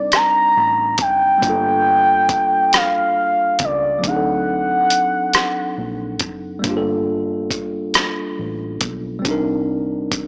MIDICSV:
0, 0, Header, 1, 5, 480
1, 0, Start_track
1, 0, Key_signature, -2, "minor"
1, 0, Tempo, 869565
1, 784, Time_signature, 6, 3, 24, 8
1, 5671, End_track
2, 0, Start_track
2, 0, Title_t, "Soft synth lead"
2, 0, Program_c, 0, 80
2, 0, Note_on_c, 0, 74, 108
2, 72, Note_off_c, 0, 74, 0
2, 78, Note_on_c, 0, 82, 104
2, 529, Note_off_c, 0, 82, 0
2, 556, Note_on_c, 0, 79, 110
2, 1526, Note_on_c, 0, 77, 93
2, 1534, Note_off_c, 0, 79, 0
2, 2011, Note_on_c, 0, 74, 77
2, 2020, Note_off_c, 0, 77, 0
2, 2245, Note_on_c, 0, 78, 95
2, 2254, Note_off_c, 0, 74, 0
2, 3435, Note_off_c, 0, 78, 0
2, 5671, End_track
3, 0, Start_track
3, 0, Title_t, "Tine electric piano"
3, 0, Program_c, 1, 4
3, 0, Control_c, 1, 64, 127
3, 0, Note_on_c, 1, 55, 59
3, 0, Note_on_c, 1, 60, 51
3, 0, Note_on_c, 1, 62, 52
3, 0, Note_on_c, 1, 63, 49
3, 0, Note_on_c, 1, 70, 62
3, 746, Note_off_c, 1, 55, 0
3, 754, Note_off_c, 1, 60, 0
3, 761, Note_off_c, 1, 62, 0
3, 762, Note_on_c, 1, 55, 55
3, 770, Note_off_c, 1, 63, 0
3, 777, Note_off_c, 1, 70, 0
3, 777, Note_on_c, 1, 58, 53
3, 790, Control_c, 1, 64, 0
3, 796, Note_on_c, 1, 62, 53
3, 811, Note_on_c, 1, 65, 49
3, 825, Note_on_c, 1, 69, 62
3, 878, Control_c, 1, 64, 127
3, 2191, Note_off_c, 1, 55, 0
3, 2199, Note_off_c, 1, 58, 0
3, 2201, Note_on_c, 1, 54, 54
3, 2208, Note_off_c, 1, 62, 0
3, 2214, Note_on_c, 1, 60, 53
3, 2216, Note_off_c, 1, 65, 0
3, 2223, Note_off_c, 1, 69, 0
3, 2232, Control_c, 1, 64, 0
3, 2233, Note_on_c, 1, 62, 51
3, 2247, Note_on_c, 1, 63, 51
3, 2262, Note_on_c, 1, 68, 51
3, 2279, Note_off_c, 1, 68, 0
3, 2299, Note_on_c, 1, 69, 62
3, 2327, Control_c, 1, 64, 127
3, 3631, Note_off_c, 1, 54, 0
3, 3637, Note_off_c, 1, 60, 0
3, 3639, Note_on_c, 1, 55, 62
3, 3647, Note_off_c, 1, 62, 0
3, 3653, Note_off_c, 1, 63, 0
3, 3654, Note_on_c, 1, 58, 62
3, 3670, Note_on_c, 1, 62, 58
3, 3672, Control_c, 1, 64, 0
3, 3680, Note_off_c, 1, 69, 0
3, 3685, Note_on_c, 1, 65, 61
3, 3702, Note_on_c, 1, 67, 56
3, 3719, Note_off_c, 1, 67, 0
3, 3736, Note_on_c, 1, 69, 72
3, 3754, Control_c, 1, 64, 127
3, 5067, Note_off_c, 1, 55, 0
3, 5073, Note_on_c, 1, 55, 63
3, 5077, Note_off_c, 1, 58, 0
3, 5085, Note_off_c, 1, 62, 0
3, 5089, Note_on_c, 1, 60, 57
3, 5093, Note_off_c, 1, 65, 0
3, 5105, Note_on_c, 1, 62, 68
3, 5112, Control_c, 1, 64, 0
3, 5118, Note_off_c, 1, 69, 0
3, 5124, Note_on_c, 1, 63, 58
3, 5138, Note_on_c, 1, 70, 73
3, 5201, Control_c, 1, 64, 127
3, 5671, Note_off_c, 1, 55, 0
3, 5671, Note_off_c, 1, 60, 0
3, 5671, Note_off_c, 1, 62, 0
3, 5671, Note_off_c, 1, 63, 0
3, 5671, Note_off_c, 1, 70, 0
3, 5671, End_track
4, 0, Start_track
4, 0, Title_t, "Fingered electric bass"
4, 0, Program_c, 2, 33
4, 0, Note_on_c, 2, 36, 75
4, 284, Note_off_c, 2, 36, 0
4, 315, Note_on_c, 2, 33, 75
4, 550, Note_off_c, 2, 33, 0
4, 550, Note_on_c, 2, 30, 76
4, 765, Note_off_c, 2, 30, 0
4, 790, Note_on_c, 2, 31, 77
4, 1756, Note_off_c, 2, 31, 0
4, 1756, Note_on_c, 2, 33, 77
4, 1968, Note_off_c, 2, 33, 0
4, 1989, Note_on_c, 2, 37, 54
4, 2205, Note_off_c, 2, 37, 0
4, 2231, Note_on_c, 2, 38, 76
4, 3166, Note_off_c, 2, 38, 0
4, 3190, Note_on_c, 2, 34, 82
4, 3429, Note_off_c, 2, 34, 0
4, 3429, Note_on_c, 2, 30, 61
4, 3645, Note_off_c, 2, 30, 0
4, 3669, Note_on_c, 2, 31, 83
4, 4605, Note_off_c, 2, 31, 0
4, 4633, Note_on_c, 2, 33, 88
4, 4847, Note_off_c, 2, 33, 0
4, 4869, Note_on_c, 2, 35, 68
4, 5085, Note_off_c, 2, 35, 0
4, 5109, Note_on_c, 2, 36, 81
4, 5671, Note_off_c, 2, 36, 0
4, 5671, End_track
5, 0, Start_track
5, 0, Title_t, "Drums"
5, 65, Note_on_c, 9, 42, 54
5, 72, Note_on_c, 9, 37, 83
5, 120, Note_off_c, 9, 42, 0
5, 128, Note_off_c, 9, 37, 0
5, 540, Note_on_c, 9, 42, 70
5, 546, Note_on_c, 9, 36, 72
5, 595, Note_off_c, 9, 42, 0
5, 601, Note_off_c, 9, 36, 0
5, 786, Note_on_c, 9, 36, 91
5, 788, Note_on_c, 9, 42, 64
5, 841, Note_off_c, 9, 36, 0
5, 844, Note_off_c, 9, 42, 0
5, 1264, Note_on_c, 9, 42, 67
5, 1265, Note_on_c, 9, 36, 80
5, 1319, Note_off_c, 9, 42, 0
5, 1320, Note_off_c, 9, 36, 0
5, 1506, Note_on_c, 9, 42, 59
5, 1513, Note_on_c, 9, 37, 85
5, 1561, Note_off_c, 9, 42, 0
5, 1568, Note_off_c, 9, 37, 0
5, 1981, Note_on_c, 9, 42, 65
5, 1986, Note_on_c, 9, 36, 75
5, 2036, Note_off_c, 9, 42, 0
5, 2042, Note_off_c, 9, 36, 0
5, 2228, Note_on_c, 9, 36, 95
5, 2229, Note_on_c, 9, 42, 71
5, 2283, Note_off_c, 9, 36, 0
5, 2284, Note_off_c, 9, 42, 0
5, 2707, Note_on_c, 9, 42, 69
5, 2762, Note_off_c, 9, 42, 0
5, 2945, Note_on_c, 9, 42, 62
5, 2952, Note_on_c, 9, 37, 89
5, 3000, Note_off_c, 9, 42, 0
5, 3007, Note_off_c, 9, 37, 0
5, 3420, Note_on_c, 9, 42, 58
5, 3426, Note_on_c, 9, 36, 72
5, 3475, Note_off_c, 9, 42, 0
5, 3481, Note_off_c, 9, 36, 0
5, 3665, Note_on_c, 9, 36, 102
5, 3665, Note_on_c, 9, 42, 67
5, 3720, Note_off_c, 9, 36, 0
5, 3720, Note_off_c, 9, 42, 0
5, 4143, Note_on_c, 9, 36, 87
5, 4146, Note_on_c, 9, 42, 69
5, 4198, Note_off_c, 9, 36, 0
5, 4201, Note_off_c, 9, 42, 0
5, 4383, Note_on_c, 9, 42, 60
5, 4390, Note_on_c, 9, 37, 82
5, 4438, Note_off_c, 9, 42, 0
5, 4445, Note_off_c, 9, 37, 0
5, 4861, Note_on_c, 9, 42, 68
5, 4865, Note_on_c, 9, 36, 74
5, 4916, Note_off_c, 9, 42, 0
5, 4920, Note_off_c, 9, 36, 0
5, 5105, Note_on_c, 9, 36, 96
5, 5106, Note_on_c, 9, 42, 71
5, 5161, Note_off_c, 9, 36, 0
5, 5162, Note_off_c, 9, 42, 0
5, 5584, Note_on_c, 9, 36, 85
5, 5584, Note_on_c, 9, 42, 74
5, 5639, Note_off_c, 9, 36, 0
5, 5639, Note_off_c, 9, 42, 0
5, 5671, End_track
0, 0, End_of_file